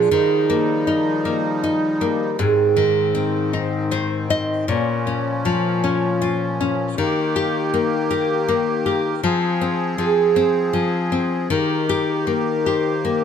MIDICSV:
0, 0, Header, 1, 4, 480
1, 0, Start_track
1, 0, Tempo, 761421
1, 76, Time_signature, 6, 3, 24, 8
1, 8348, End_track
2, 0, Start_track
2, 0, Title_t, "Harp"
2, 0, Program_c, 0, 46
2, 0, Note_on_c, 0, 65, 73
2, 0, Note_on_c, 0, 68, 71
2, 0, Note_on_c, 0, 70, 78
2, 81, Note_on_c, 0, 72, 78
2, 223, Note_off_c, 0, 65, 0
2, 553, Note_off_c, 0, 70, 0
2, 555, Note_on_c, 0, 70, 76
2, 789, Note_off_c, 0, 70, 0
2, 791, Note_on_c, 0, 70, 76
2, 1265, Note_on_c, 0, 67, 71
2, 1303, Note_off_c, 0, 68, 0
2, 1329, Note_off_c, 0, 72, 0
2, 1507, Note_on_c, 0, 68, 69
2, 1545, Note_off_c, 0, 67, 0
2, 2129, Note_off_c, 0, 70, 0
2, 2228, Note_on_c, 0, 72, 75
2, 2707, Note_off_c, 0, 72, 0
2, 2710, Note_on_c, 0, 72, 76
2, 2940, Note_off_c, 0, 68, 0
2, 2953, Note_on_c, 0, 73, 81
2, 2991, Note_off_c, 0, 72, 0
2, 3439, Note_on_c, 0, 77, 88
2, 3678, Note_off_c, 0, 73, 0
2, 3680, Note_on_c, 0, 73, 83
2, 4398, Note_on_c, 0, 70, 83
2, 4488, Note_off_c, 0, 77, 0
2, 4885, Note_off_c, 0, 73, 0
2, 5105, Note_off_c, 0, 70, 0
2, 5108, Note_on_c, 0, 70, 80
2, 5581, Note_off_c, 0, 70, 0
2, 5584, Note_on_c, 0, 70, 80
2, 5819, Note_on_c, 0, 72, 77
2, 6299, Note_on_c, 0, 68, 82
2, 6533, Note_off_c, 0, 72, 0
2, 6535, Note_on_c, 0, 72, 84
2, 6921, Note_off_c, 0, 70, 0
2, 7258, Note_on_c, 0, 70, 81
2, 7732, Note_off_c, 0, 68, 0
2, 7783, Note_off_c, 0, 72, 0
2, 7994, Note_on_c, 0, 72, 81
2, 8348, Note_off_c, 0, 70, 0
2, 8348, Note_off_c, 0, 72, 0
2, 8348, End_track
3, 0, Start_track
3, 0, Title_t, "Nylon-string guitar"
3, 0, Program_c, 1, 24
3, 0, Note_on_c, 1, 53, 46
3, 65, Note_off_c, 1, 53, 0
3, 72, Note_on_c, 1, 51, 62
3, 313, Note_on_c, 1, 58, 51
3, 549, Note_on_c, 1, 63, 45
3, 781, Note_off_c, 1, 58, 0
3, 789, Note_on_c, 1, 58, 51
3, 1023, Note_off_c, 1, 63, 0
3, 1031, Note_on_c, 1, 63, 51
3, 1260, Note_off_c, 1, 58, 0
3, 1268, Note_on_c, 1, 58, 48
3, 1478, Note_off_c, 1, 51, 0
3, 1492, Note_off_c, 1, 63, 0
3, 1498, Note_off_c, 1, 58, 0
3, 1506, Note_on_c, 1, 44, 60
3, 1743, Note_on_c, 1, 51, 49
3, 1984, Note_on_c, 1, 60, 45
3, 2227, Note_on_c, 1, 63, 48
3, 2460, Note_off_c, 1, 51, 0
3, 2467, Note_on_c, 1, 51, 45
3, 2470, Note_on_c, 1, 72, 54
3, 2694, Note_off_c, 1, 72, 0
3, 2705, Note_off_c, 1, 63, 0
3, 2712, Note_on_c, 1, 63, 42
3, 2713, Note_on_c, 1, 75, 58
3, 2930, Note_off_c, 1, 44, 0
3, 2930, Note_off_c, 1, 60, 0
3, 2938, Note_off_c, 1, 75, 0
3, 2940, Note_off_c, 1, 51, 0
3, 2948, Note_off_c, 1, 63, 0
3, 2951, Note_on_c, 1, 46, 57
3, 3195, Note_on_c, 1, 61, 51
3, 3437, Note_on_c, 1, 53, 49
3, 3672, Note_off_c, 1, 61, 0
3, 3679, Note_on_c, 1, 61, 49
3, 3918, Note_on_c, 1, 65, 50
3, 4157, Note_off_c, 1, 61, 0
3, 4164, Note_on_c, 1, 61, 47
3, 4374, Note_off_c, 1, 46, 0
3, 4374, Note_off_c, 1, 53, 0
3, 4385, Note_off_c, 1, 65, 0
3, 4395, Note_off_c, 1, 61, 0
3, 4401, Note_on_c, 1, 51, 59
3, 4639, Note_on_c, 1, 67, 50
3, 4877, Note_on_c, 1, 58, 50
3, 5102, Note_off_c, 1, 67, 0
3, 5110, Note_on_c, 1, 67, 54
3, 5341, Note_off_c, 1, 58, 0
3, 5349, Note_on_c, 1, 58, 52
3, 5577, Note_off_c, 1, 67, 0
3, 5584, Note_on_c, 1, 67, 48
3, 5799, Note_off_c, 1, 51, 0
3, 5810, Note_off_c, 1, 58, 0
3, 5816, Note_off_c, 1, 67, 0
3, 5822, Note_on_c, 1, 53, 64
3, 6061, Note_on_c, 1, 60, 50
3, 6285, Note_off_c, 1, 53, 0
3, 6293, Note_on_c, 1, 53, 49
3, 6524, Note_off_c, 1, 60, 0
3, 6532, Note_on_c, 1, 60, 51
3, 6759, Note_off_c, 1, 53, 0
3, 6767, Note_on_c, 1, 53, 51
3, 7002, Note_off_c, 1, 60, 0
3, 7010, Note_on_c, 1, 60, 49
3, 7240, Note_off_c, 1, 53, 0
3, 7248, Note_off_c, 1, 60, 0
3, 7251, Note_on_c, 1, 51, 61
3, 7498, Note_on_c, 1, 67, 52
3, 7735, Note_on_c, 1, 58, 48
3, 7975, Note_off_c, 1, 67, 0
3, 7983, Note_on_c, 1, 67, 48
3, 8217, Note_off_c, 1, 58, 0
3, 8224, Note_on_c, 1, 58, 53
3, 8348, Note_off_c, 1, 51, 0
3, 8348, Note_off_c, 1, 58, 0
3, 8348, Note_off_c, 1, 67, 0
3, 8348, End_track
4, 0, Start_track
4, 0, Title_t, "Accordion"
4, 0, Program_c, 2, 21
4, 78, Note_on_c, 2, 63, 77
4, 80, Note_on_c, 2, 55, 61
4, 81, Note_on_c, 2, 53, 69
4, 1492, Note_off_c, 2, 63, 0
4, 1493, Note_off_c, 2, 53, 0
4, 1493, Note_off_c, 2, 55, 0
4, 1498, Note_on_c, 2, 44, 70
4, 1500, Note_on_c, 2, 60, 72
4, 1503, Note_on_c, 2, 51, 64
4, 2937, Note_off_c, 2, 44, 0
4, 2938, Note_off_c, 2, 60, 0
4, 2939, Note_off_c, 2, 51, 0
4, 2952, Note_on_c, 2, 46, 65
4, 2953, Note_on_c, 2, 53, 62
4, 2957, Note_on_c, 2, 61, 72
4, 4385, Note_off_c, 2, 46, 0
4, 4385, Note_off_c, 2, 53, 0
4, 4388, Note_off_c, 2, 61, 0
4, 4391, Note_on_c, 2, 67, 81
4, 4392, Note_on_c, 2, 51, 71
4, 4395, Note_on_c, 2, 58, 64
4, 5806, Note_off_c, 2, 51, 0
4, 5806, Note_off_c, 2, 67, 0
4, 5807, Note_off_c, 2, 58, 0
4, 5817, Note_on_c, 2, 53, 65
4, 5819, Note_on_c, 2, 60, 62
4, 5820, Note_on_c, 2, 68, 78
4, 7241, Note_off_c, 2, 53, 0
4, 7242, Note_off_c, 2, 60, 0
4, 7242, Note_off_c, 2, 68, 0
4, 7256, Note_on_c, 2, 51, 63
4, 7256, Note_on_c, 2, 67, 76
4, 7258, Note_on_c, 2, 58, 61
4, 8348, Note_off_c, 2, 51, 0
4, 8348, Note_off_c, 2, 58, 0
4, 8348, Note_off_c, 2, 67, 0
4, 8348, End_track
0, 0, End_of_file